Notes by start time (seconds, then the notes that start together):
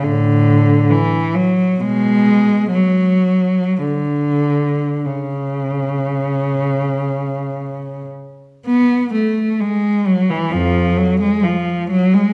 0.04 A2 D3
0.90 E3
1.35 F#3
1.80 B2 G#3
2.72 F#3
3.83 D3
5.05 C#3
8.65 B3
9.14 A3
9.60 G#3
10.07 F#3
10.29 E3
10.51 F2 F3
10.97 F#3
11.21 G#3
11.43 F3
11.90 F#3
12.14 G#3